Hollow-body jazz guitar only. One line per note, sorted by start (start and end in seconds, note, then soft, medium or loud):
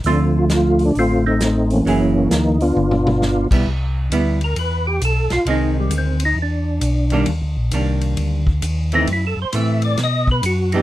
0.06 1.32 D3 medium
0.06 1.32 A3 medium
0.06 1.32 C4 medium
0.06 1.32 F4 medium
1.86 2.55 F#3 medium
1.86 2.55 A#3 medium
1.86 2.56 E4 medium
1.86 2.56 G#4 medium
3.52 3.65 G3 medium
3.52 3.66 B3 medium
3.52 3.66 E4 medium
4.12 4.39 G3 medium
4.12 4.39 B3 medium
4.12 4.39 E4 medium
5.47 6.16 D#3 medium
5.47 6.16 G#3 medium
5.47 6.16 C4 medium
7.12 7.26 D#3 medium
7.12 7.27 G3 medium
7.12 7.27 A#3 medium
7.12 7.27 D4 medium
7.73 8.42 D#3 soft
7.73 8.42 G3 soft
7.73 8.42 A#3 medium
7.73 8.42 D4 medium
8.93 9.07 E3 medium
8.93 9.07 A3 medium
8.93 9.07 C4 medium
9.54 9.99 E3 soft
9.54 9.99 A3 soft
9.54 9.99 C4 soft
10.74 10.82 E3 medium
10.74 10.82 B3 medium
10.74 10.82 D4 medium
10.74 10.82 G4 medium